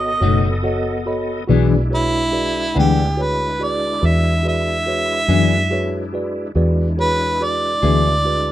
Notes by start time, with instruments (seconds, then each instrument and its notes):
Already playing: fingered electric bass G#1, tonewheel organ B3 A4 D#5, tine electric piano F#4 A4 C#5 D#5, harmonica D#5
0.21 fingered electric bass F#1, clean electric guitar B2 A3 D#4 F#4, tine electric piano F#4 A4 C#5 D#5
0.63 tine electric piano F#4 A4 C#5 D#5 F#5
1.06 tine electric piano F#4 A4 C#5 D#5 B5
1.47 fingered electric bass B1, clean electric guitar E3 B3 D4 G#4, tonewheel organ G#3 D4 E4, tine electric piano F#4 G#4 B4 D5
1.90 tine electric piano F#4 G#4 B4 C#5
1.95 harmonica E4
2.32 tine electric piano F#4 G#4 B4 D5
2.75 fingered electric bass D2, clean electric guitar E3 B3 D4 G#4, tine electric piano G#3 B4 D5 F#5
2.79 harmonica G4
3.16 tine electric piano F#4 G#4 B4 C#5
3.22 harmonica B4
3.59 tine electric piano F#4 G#4 B4 D5
3.64 harmonica D5
4.01 fingered electric bass E2, tine electric piano F#4 G#4 B4 D5
4.07 harmonica E5
4.43 tine electric piano F#4 G#4 B4 D5
4.48 harmonica E5
4.86 tine electric piano F#4 G#4 B4 C#5
5.28 fingered electric bass F#2, clean electric guitar E3 B3 D4 G#4, tine electric piano F#4 G#4 B4 D5
5.71 tine electric piano F#4 G#4 B4 C#5
6.13 tine electric piano F#4 G#4 B4 D5
6.55 fingered electric bass E2, tonewheel organ G#3 D4 E4, tine electric piano F#4 G#4 B4 D5
6.97 tine electric piano F#4 G#4 B4 C#5, harmonica B4
7.40 tine electric piano F#4 G#4 B4 D5, harmonica D5
7.82 fingered electric bass D2, clean electric guitar E3 B3 D4 G#4, tine electric piano F#4 G#4 B4 E5
8.25 tine electric piano F#4 G#4 B4 D5